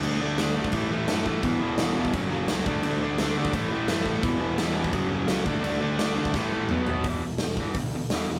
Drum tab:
CC |x---x---x---x---|x---x---x---x---|x---x---x---x---|x---x---x---x---|
HH |----------------|----------------|----------------|----------------|
SD |----o-------o---|----o-------o---|----o-------o---|----o-------o---|
T2 |----------------|----------------|----------------|----------------|
FT |----------------|----------------|----------------|----------------|
BD |-------oo-----o-|o------oo-----o-|-------oo-----o-|o------oo-----o-|

CC |x---x-----------|----------------|
HH |----------------|o---o---o---o---|
SD |----o---o-------|----o-------o---|
T2 |------------o---|----------------|
FT |--------------o-|----------------|
BD |-------oo-------|o-----o-o-------|